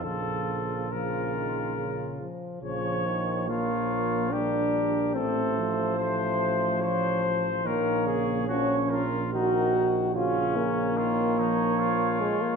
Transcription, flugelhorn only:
X:1
M:3/4
L:1/8
Q:1/4=72
K:Bbm
V:1 name="Flugelhorn"
F2 F3 z | d2 d2 B2 | c4 d c | d2 d B B z |
d2 d4 |]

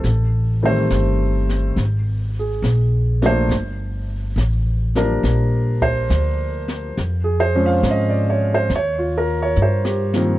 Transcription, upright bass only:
X:1
M:4/4
L:1/8
Q:"Swing" 1/4=69
K:Gdor
V:1 name="Upright bass" clef=bass
A,,,2 G,,,2 _A,,,2 B,,,2 | G,,,2 A,,,2 B,,,2 D,,2 | F,,2 _A,,2 _E,,2 G,,2 |]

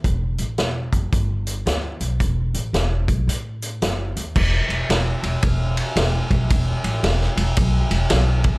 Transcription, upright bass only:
X:1
M:4/4
L:1/8
Q:"Swing" 1/4=112
K:Em
V:1 name="Upright bass" clef=bass
E,,, A,,, E,,, F,,, G,,,2 D,, B,,, | E,,, A,,, E,,, B,,, A,,2 F,,, ^D,, | E,,, E,,, E,,, E,,, E,,,2 E,,, B,,, | E,,, A,,, E,,, E,,, B,,, E,,, B,,,2 |]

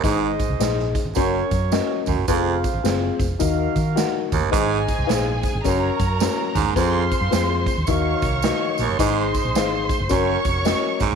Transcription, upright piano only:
X:1
M:4/4
L:1/8
Q:"Swing" 1/4=107
K:Abmix
V:1 name="Upright piano"
[EAce] z [EAce] z [DGBd] z [DGBe] z | [CFAc] z [CFAc] z [EGBe] z [EGBg] z | [EAce] z [EAcf] z [DGBd] z [DGBd] z | [CFAc] z [CFAc] z [EGBe] z [EGBe] z |
[EAce] z [EAcf] z [DGBd] z [DGBe] z |]
V:2 name="Upright piano" clef=bass
A,,3 z4 z | z4 E,3 z | A,,3 z4 z | z4 E,3 z |
A,,3 z4 z |]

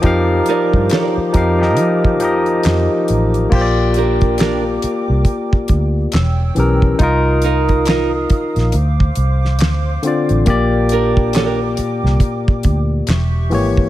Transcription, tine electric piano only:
X:1
M:4/4
L:1/16
Q:"Swing 16ths" 1/4=69
K:Bb
V:1 name="Tine electric piano"
[F,EGBf]4- [F,EGBf] z [F,EGBf] [F,EGBe]2 z [F,EGBe]4- [F,EGBe] z | [B,FGcd]6 z8 [=E,^CGB]2 | [EFB]6 z8 [D,CFd]2 | [B,,B,Gd]6 z8 [=E,B,G^c]2 |]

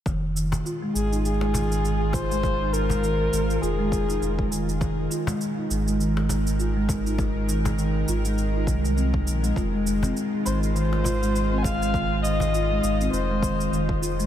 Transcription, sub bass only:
X:1
M:4/4
L:1/8
Q:"Swing 16ths" 1/4=101
K:Fm
V:1 name="Sub bass" clef=bass
F,,,2 z A,,,4- A,,,- | A,,,3 A,,, F,,,2 F,,,2- | F,,, z2 A,,,4- A,,,- | A,,,3 A,,,2 C,,2 B,,, |
F,,,2 z A,,,4- A,,,- | A,,,3 A,,, F,,,2 F,,,2 |]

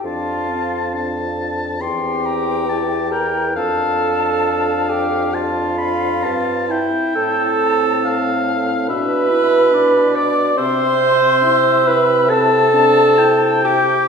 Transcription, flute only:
X:1
M:4/4
L:1/8
Q:1/4=68
K:Flyd
V:1 name="Flute"
f3 z g3 _b | a3 g f3 e | [K:C] a3 z b3 d' | c'3 b a3 g |]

